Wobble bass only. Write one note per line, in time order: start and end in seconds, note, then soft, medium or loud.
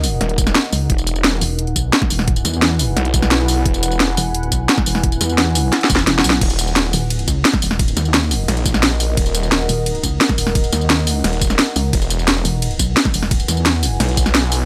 0.00 0.19 D#2 loud
0.72 0.88 C#2 loud
1.41 1.75 E1 loud
1.76 1.92 B1 loud
2.10 2.44 E1 loud
2.45 2.95 E2 medium
4.17 4.50 E1 loud
4.52 4.68 B1 loud
4.86 5.19 E1 loud
5.21 5.71 E2 loud
5.90 6.06 E1 loud
6.07 6.23 E1 loud
6.24 6.40 B1 loud
6.93 7.26 D#1 loud
7.28 7.44 C#2 loud
7.62 7.95 D#1 loud
7.97 8.47 D#2 loud
9.69 10.02 D#1 loud
10.04 10.19 C#2 loud
10.38 10.71 D#1 loud
10.72 11.23 D#2 loud
11.76 11.92 C#2 loud
12.45 12.78 E1 loud
12.79 12.95 B1 loud
13.14 13.47 E1 loud
13.48 13.99 E2 medium